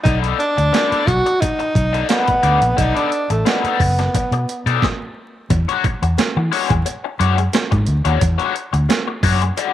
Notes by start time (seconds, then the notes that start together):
0.03 B1 B3 D#4 A4 D5, kick, closed hi-hat
0.24 closed hi-hat
0.39 D4, closed hi-hat
0.57 D2, muted overdriven electric guitar stroke, closed hi-hat
0.73 B3 A4 D5, snare, closed hi-hat
0.92 muted fingered electric bass stroke, closed hi-hat
1.07 B1 F#4, muted overdriven electric guitar stroke, kick, closed hi-hat
1.26 muted overdriven electric guitar stroke, closed hi-hat
1.40 D#4, muted overdriven electric guitar stroke, kick, closed hi-hat
1.59 muted overdriven electric guitar stroke, closed hi-hat
1.75 B1, kick, closed hi-hat
1.93 B3 D#4 A4 D5, closed hi-hat
2.08 B3 D#4 A4 D5, snare, closed hi-hat
2.26 muted overdriven electric guitar stroke, kick, closed hi-hat
2.43 D2 B3 D#4 A4 D5, closed hi-hat
2.61 A#1, muted overdriven electric guitar stroke, closed hi-hat
2.77 B1 B3 D#4 A4 D5, kick, closed hi-hat
2.96 D4, closed hi-hat
3.12 closed hi-hat
3.30 A1 A3, muted overdriven electric guitar stroke, closed hi-hat
3.45 B3 D#4 A4 D5, snare, closed hi-hat
3.64 muted fingered electric bass stroke, closed hi-hat
3.80 F#1, muted overdriven electric guitar stroke, kick, open hi-hat
3.99 muted overdriven electric guitar stroke, snare, closed hi-hat
4.15 muted overdriven electric guitar stroke, kick, closed hi-hat
4.32 B2, muted overdriven electric guitar stroke, closed hi-hat
4.49 closed hi-hat
4.66 B2 B3 D#4 A4 D5, closed hi-hat
4.82 kick, snare
5.50 E2, muted overdriven electric guitar stroke, kick, closed hi-hat
5.69 G#3 D4 F#4 C#5, closed hi-hat
5.84 muted overdriven electric guitar stroke, kick, closed hi-hat
6.02 E2, muted overdriven electric guitar stroke, closed hi-hat
6.18 muted overdriven electric guitar stroke, snare, closed hi-hat
6.36 E3, muted overdriven electric guitar stroke
6.52 G#3 D4 F#4 C#5, open hi-hat
6.70 E2, muted overdriven electric guitar stroke, kick, closed hi-hat
6.85 muted overdriven electric guitar stroke, closed hi-hat
7.04 muted overdriven electric guitar stroke
7.19 F#2 G#3 D4 F#4 C#5, closed hi-hat
7.38 muted overdriven electric guitar stroke, closed hi-hat
7.53 muted overdriven electric guitar stroke, snare, closed hi-hat
7.71 G#2, muted overdriven electric guitar stroke, kick, closed hi-hat
7.86 D2, closed hi-hat
8.05 D#2 G#3 D4 F#4 C#5, closed hi-hat
8.21 E2, muted overdriven electric guitar stroke, kick, closed hi-hat
8.38 G#3 D4 F#4 C#5, closed hi-hat
8.54 muted overdriven electric guitar stroke, closed hi-hat
8.73 D2, muted overdriven electric guitar stroke, closed hi-hat
8.89 muted overdriven electric guitar stroke, snare, closed hi-hat
9.07 muted overdriven electric guitar stroke
9.23 F#2 G#3 D4 F#4 C#5, kick, open hi-hat
9.42 muted overdriven electric guitar stroke, closed hi-hat
9.57 G#3 D4 F#4 D5, closed hi-hat